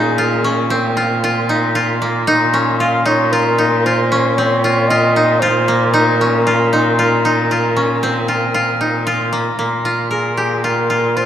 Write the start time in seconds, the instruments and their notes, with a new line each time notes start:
Already playing: cello A#2, koto A#3 C#4 D#4 F4, flugelhorn G#4
0.18 koto F4
0.44 koto C#4
0.70 koto C4
0.97 koto F4
1.24 koto F4
1.49 koto D#4
1.75 koto F4
2.02 koto A#3
2.27 cello A#2, koto D#4
2.54 koto C#4
2.80 koto F4, flugelhorn F5
3.05 koto D#4, flugelhorn C#5
3.33 koto F4, flugelhorn A#4
3.58 koto D#4
3.85 koto F4, flugelhorn C5
4.12 koto C#4
4.35 koto C4, flugelhorn C#5
4.64 koto F4
4.88 koto F4, flugelhorn D#5
5.16 koto D#4
5.40 koto F4, flugelhorn C5
5.68 koto A#3
5.92 koto D#4, flugelhorn A#4
6.21 koto C#4
6.47 koto F4
6.73 koto D#4
6.99 koto F4
7.25 koto D#4
7.51 koto F4
7.76 koto C#4
8.03 koto C4
8.28 koto F4
8.54 koto F4
8.81 koto D#4
9.07 koto F4
9.33 koto A#3
9.58 cello A#2, koto A#3
9.85 koto F4
10.10 flugelhorn G#4, koto A#4
10.36 koto G4, flugelhorn G#4
10.63 koto F4, flugelhorn A#4
10.90 koto F4
11.17 koto F4, flugelhorn C5